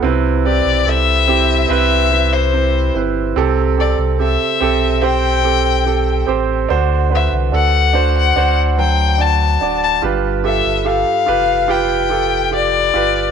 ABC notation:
X:1
M:4/4
L:1/16
Q:1/4=72
K:C
V:1 name="Violin"
z2 d2 e4 e3 c3 z2 | z2 d2 e4 g6 z2 | z2 e2 ^f3 f2 z g2 a3 a- | a z e2 f4 g4 d4 |]
V:2 name="Grand piano"
[CEB]2 [CEG]2 [CEA]2 [CEG]2 [CEB]2 [CEB]2 [CEc]2 [CEB]2 | [CGA]2 [CGA]2 [CGA]2 [CGA]2 [CGc]2 [CGA]2 [CGA]2 [CGc]2 | [D^Fc]2 [DFB]2 [DFA]2 [DFc]2 [DFc]2 [^F,Dc]2 [DFd]2 [DFd]2 | [FGB]2 [FGA]2 [FGA]2 [FGB]2 [FGB]2 [FGA]2 [FGd]2 [FGB]2 |]
V:3 name="Grand piano" clef=bass
C,6 z8 z2 | C,6 z8 z2 | D,6 z8 z2 | G,,6 z8 z2 |]
V:4 name="Sub bass" clef=bass
C,,3 B,,, C,,4 C,,6 G,,,2 | C,,3 C,,2 z B,,,8 A,,,2 | D,,3 C,, D,,4 D,,6 D,,,2 | G,,,3 G,,,2 z F,,,8 G,,,2 |]